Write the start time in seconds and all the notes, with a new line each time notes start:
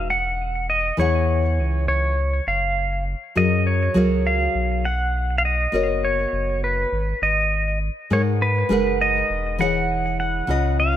Already playing: E1
0.10 F#5
0.70 D#5
0.97 E2 E3 E4 G#4 C#5 F#5
1.58 C#2
1.88 C#2 C#5
2.47 F#1 F5
3.35 F#2 F#3 F#4 G#4 A#4 D#5 F5
3.67 C#5
3.94 C#2 F#3 F#4 G#4 A#4 F5
4.27 F5
4.55 B1
4.85 F#5
5.38 F5
5.45 D#5
5.72 F#1 B3 F#4 A#4 C#5 D#5
6.05 C#5
6.33 F#1
6.64 B4
6.93 G#1
7.22 G#1 D#5
8.10 G#2 G#3 D#4 A#4 B4 C#5 F#5
8.42 B4
8.69 F#1 G#3 D#4 A#4 B4 F#5
9.01 D#5
9.30 E1
9.58 E3 E4 G#4 C#5 F#5
10.20 F#5
10.47 C#2 C#3 C#4 F4 B4 D#5
10.80 F5